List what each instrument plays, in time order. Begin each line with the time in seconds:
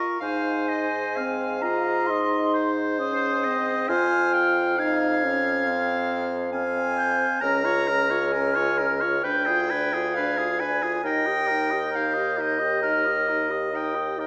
Already playing: french horn F4, oboe A#4, flute C#6
0.20 bassoon G#2, french horn D#4, oboe C5, clarinet F5, flute G#5
0.68 clarinet D#5
1.16 french horn C4, clarinet F5, oboe F5
1.61 french horn F4, clarinet D#5, flute A#5
2.06 french horn D#4, oboe D#5, flute C6
2.54 oboe C5
2.98 french horn C#4, clarinet C5, flute D#6
3.44 french horn C4, clarinet D#5
3.89 bassoon F2, french horn F4, oboe C5, clarinet G#5, flute F6
4.33 oboe F5, clarinet G5
4.78 french horn D#4, clarinet F5, flute G#6
5.24 french horn C#4
5.67 french horn C4
6.52 french horn C4, oboe F5, clarinet G#5
6.97 flute G6
7.41 bassoon C#2, french horn C#4, oboe A#4, clarinet A#5, flute F6
7.65 french horn F4, oboe C#5
7.86 french horn C#4, oboe A#4, flute F6
8.10 french horn F4, oboe C#5
8.32 french horn C#4, oboe A#4, clarinet G#5
8.55 french horn F4, oboe C#5
8.78 french horn C#4, oboe A#4
9.01 french horn F4, oboe C#5
9.23 bassoon D2, french horn D4, oboe B4, clarinet G5, flute G6
9.46 french horn F4, oboe G#4
9.70 french horn D4, oboe B4, flute G#6
9.93 french horn F4, oboe G#4
10.14 french horn D4, oboe B4, clarinet F5
10.38 french horn F4, oboe G#4
10.60 french horn D4, oboe B4, clarinet G#5
10.83 french horn F4, oboe G#4
11.04 bassoon D#2, french horn D#4, oboe A#4, clarinet G5, flute A#6
11.27 french horn G4, oboe D#5
11.47 french horn D#4, oboe A#4
11.71 french horn G4, oboe D#5
11.91 french horn D#4, oboe A#4, flute G6
11.96 clarinet F5
12.14 french horn G4, oboe D#5
12.38 french horn D#4, oboe A#4, clarinet D#5
12.60 french horn G4, oboe D#5
12.82 french horn D#4, oboe A#4, flute F6
13.05 french horn G4, oboe D#5
13.28 french horn D#4, oboe A#4
13.50 french horn G4, oboe D#5
13.73 french horn D#4, oboe A#4, clarinet G5, flute D#6
13.95 french horn G4, oboe D#5
14.18 french horn D#4, oboe A#4, clarinet G5